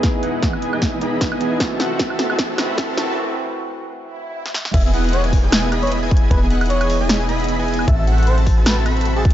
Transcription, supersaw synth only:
0.03 0.21 B3 medium
0.03 0.21 E4 medium
0.03 0.21 G#4 medium
0.03 0.21 D#5 medium
0.23 0.51 B3 loud
0.23 0.51 E4 medium
0.23 0.51 G#4 medium
0.23 0.51 D#5 medium
0.23 0.51 F#5 loud
0.53 0.70 B3 medium
0.53 0.70 E4 medium
0.53 0.70 G#4 medium
0.53 0.70 D#5 medium
0.53 0.70 G#5 medium
0.73 0.99 B3 medium
0.73 0.99 E4 medium
0.73 0.99 G#4 medium
0.73 0.99 D#5 medium
0.73 0.99 G#5 medium
1.01 1.29 B3 medium
1.01 1.29 E4 medium
1.01 1.29 G#4 medium
1.01 1.29 D#5 medium
1.01 1.29 B5 loud
1.32 1.58 B3 medium
1.32 1.58 E4 medium
1.32 1.58 G#4 medium
1.32 1.58 D#5 medium
1.32 1.58 G#5 loud
1.60 1.78 F#4 medium
1.60 1.78 A4 medium
1.80 2.08 C4 medium
1.80 2.08 F#4 medium
1.80 2.08 A4 medium
1.80 2.08 E5 medium
1.80 2.08 F#5 loud
2.10 2.27 C4 medium
2.10 2.27 F#4 medium
2.10 2.27 A4 medium
2.10 2.27 E5 medium
2.10 2.27 A5 medium
2.30 2.56 C4 medium
2.30 2.56 F#4 medium
2.30 2.56 A4 medium
2.30 2.56 E5 medium
2.30 2.56 A5 medium
2.58 2.86 C4 medium
2.58 2.86 F#4 medium
2.58 2.86 A4 medium
2.58 2.86 E5 medium
2.58 2.86 B5 loud
2.89 3.15 C4 medium
2.89 3.15 F#4 medium
2.89 3.15 A4 medium
2.89 3.15 E5 medium
2.89 3.15 A5 loud
4.74 4.92 B3 medium
4.74 4.92 E4 medium
4.74 4.92 G#4 medium
4.74 4.92 D#5 medium
4.74 4.92 G#5 medium
4.94 5.21 B3 loud
4.94 5.21 E4 medium
4.94 5.21 G#4 medium
4.94 5.21 D#5 medium
4.94 5.21 F#5 loud
5.24 5.41 B3 medium
5.24 5.41 E4 medium
5.24 5.41 G#4 medium
5.24 5.41 D#5 medium
5.24 5.41 G#5 medium
5.44 5.70 B3 medium
5.44 5.70 E4 medium
5.44 5.70 G#4 medium
5.44 5.70 D#5 medium
5.44 5.70 G#5 loud
5.72 6.00 B3 medium
5.72 6.00 E4 medium
5.72 6.00 G#4 medium
5.72 6.00 D#5 medium
5.72 6.00 B5 loud
6.02 6.29 B3 medium
6.02 6.29 E4 medium
6.02 6.29 G#4 medium
6.02 6.29 D#5 medium
6.02 6.29 G#5 loud
6.31 6.48 B3 medium
6.31 6.48 E4 medium
6.31 6.48 G#4 medium
6.31 6.48 D#5 medium
6.31 6.48 G#5 medium
6.50 6.78 B3 loud
6.50 6.78 E4 medium
6.50 6.78 G#4 medium
6.50 6.78 D#5 medium
6.50 6.78 F#5 loud
6.81 6.98 B3 medium
6.81 6.98 E4 medium
6.81 6.98 G#4 medium
6.81 6.98 D#5 medium
6.81 6.98 G#5 medium
7.01 7.27 B3 medium
7.01 7.27 E4 medium
7.01 7.27 G#4 medium
7.01 7.27 D#5 medium
7.01 7.27 G#5 loud
7.29 7.57 B3 medium
7.29 7.57 E4 medium
7.29 7.57 G#4 medium
7.29 7.57 D#5 medium
7.29 7.57 B5 loud
7.59 7.86 B3 loud
7.59 7.86 E4 medium
7.59 7.86 G#4 medium
7.59 7.86 D#5 medium
7.59 7.86 G#5 loud
8.07 8.35 C4 loud
8.07 8.35 F#4 medium
8.07 8.35 A4 medium
8.07 8.35 E5 medium
8.07 8.35 F#5 loud
8.38 8.55 C4 medium
8.38 8.55 F#4 medium
8.38 8.55 A4 medium
8.38 8.55 E5 medium
8.38 8.55 A5 medium
8.57 8.84 C4 medium
8.57 8.84 F#4 medium
8.57 8.84 A4 medium
8.57 8.84 E5 medium
8.57 8.84 A5 loud
8.86 9.14 C4 medium
8.86 9.14 F#4 medium
8.86 9.14 A4 medium
8.86 9.14 E5 medium
8.86 9.14 B5 loud
9.16 9.34 C4 loud
9.16 9.34 F#4 medium
9.16 9.34 A4 medium
9.16 9.34 E5 medium
9.16 9.34 A5 loud

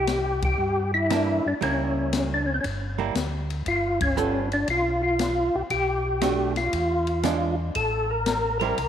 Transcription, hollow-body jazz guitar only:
1.10 1.42 E3 medium
1.10 1.42 A#3 medium
1.10 1.42 D4 medium
1.61 2.40 G3 medium
1.61 2.41 A#3 medium
1.61 2.41 E4 medium
2.98 3.13 G3 medium
2.98 3.13 A#3 medium
2.98 3.14 E4 medium
4.17 4.49 G3 medium
4.17 4.49 B3 medium
4.17 4.49 F4 medium
4.17 4.49 A4 medium
6.22 6.53 A3 medium
6.22 6.54 D4 medium
6.22 6.54 F#4 medium
7.24 7.55 E3 medium
7.24 7.56 G#3 medium
7.24 7.55 D4 medium
7.24 7.56 F4 medium
8.61 8.76 G3 medium
8.61 8.76 C4 medium
8.61 8.77 E4 medium

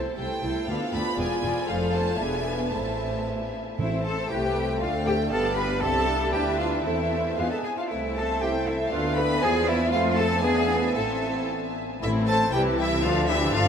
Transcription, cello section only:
0.18 0.26 C2 soft
0.43 0.51 C2 soft
0.68 0.76 D2 medium
0.93 1.01 D2 medium
1.18 1.26 E2 medium
1.43 1.51 E2 medium
1.69 2.16 F2 medium
2.20 2.72 E2 soft
2.73 3.58 A2 soft
3.78 4.03 E4 medium
4.05 4.30 A4 medium
4.30 4.80 G4 medium
4.81 4.89 F4 medium
5.07 5.15 G4 medium
5.32 5.57 A4 medium
5.57 5.82 B4 medium
5.82 6.33 A4 medium
6.34 6.59 G4 medium
6.60 6.85 F4 medium
6.85 7.37 E4 medium
7.38 7.51 F4 medium
7.51 7.57 A4 medium
7.64 7.70 G#4 medium
7.78 7.90 F4 medium
7.90 8.16 E4 medium
8.16 8.41 A4 medium
8.42 8.50 G4 medium
8.67 8.75 E4 medium
8.92 9.17 F4 medium
9.17 9.42 B4 loud
9.42 9.67 G#4 loud
9.68 9.92 E4 medium
9.93 10.17 F4 medium
10.18 10.43 A4 loud
10.43 10.94 G#4 medium
10.95 11.48 A4 medium
12.02 12.50 A2 medium
12.54 13.05 C3 medium
13.04 13.55 D3 medium
13.54 13.68 G2 medium

